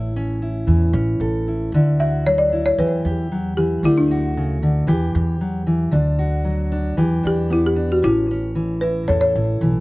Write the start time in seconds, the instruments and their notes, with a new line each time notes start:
Already playing: upright bass A1, steel-string acoustic guitar A2 E3 E4, marimba C#5
0.16 steel-string acoustic guitar C#4
0.42 steel-string acoustic guitar E4
0.67 upright bass E2, steel-string acoustic guitar E3
0.93 upright bass A1, steel-string acoustic guitar C#4
1.20 upright bass A1, steel-string acoustic guitar A4
1.47 steel-string acoustic guitar E4
1.72 upright bass D2, steel-string acoustic guitar D3 E4
2.00 steel-string acoustic guitar F#4, marimba E5
2.26 steel-string acoustic guitar F#3, marimba C#5
2.38 marimba D5
2.52 steel-string acoustic guitar E4
2.66 marimba C#5
2.78 upright bass E2, steel-string acoustic guitar E3 G4, marimba B4
3.05 upright bass E2, steel-string acoustic guitar G4
3.32 steel-string acoustic guitar F#3
3.57 steel-string acoustic guitar E3, marimba G4
3.83 upright bass D2, steel-string acoustic guitar D3 A3, marimba E4
3.98 marimba D4
4.11 steel-string acoustic guitar F#4
4.37 steel-string acoustic guitar C#3
4.63 steel-string acoustic guitar D3
4.87 upright bass E2, steel-string acoustic guitar E3 G4
5.15 upright bass E2, steel-string acoustic guitar G4
5.41 steel-string acoustic guitar F#3
5.67 steel-string acoustic guitar E3
5.91 upright bass D2, steel-string acoustic guitar D3 D4
6.19 steel-string acoustic guitar F#4
6.45 steel-string acoustic guitar F#3
6.72 steel-string acoustic guitar D4
6.97 upright bass E2, steel-string acoustic guitar E3 G4
7.23 upright bass E2, steel-string acoustic guitar D4, marimba G4
7.50 steel-string acoustic guitar B3, marimba E4
7.67 marimba G4
7.76 steel-string acoustic guitar D4
7.92 marimba F#4
8.02 upright bass A1, steel-string acoustic guitar A2 C#4, marimba E4
8.31 steel-string acoustic guitar C#4
8.55 steel-string acoustic guitar E3
8.81 steel-string acoustic guitar E4, marimba B4
9.08 upright bass E2, steel-string acoustic guitar A2 A4, marimba C#5
9.21 marimba C#5
9.35 upright bass A1, steel-string acoustic guitar E4
9.61 upright bass B1, steel-string acoustic guitar E3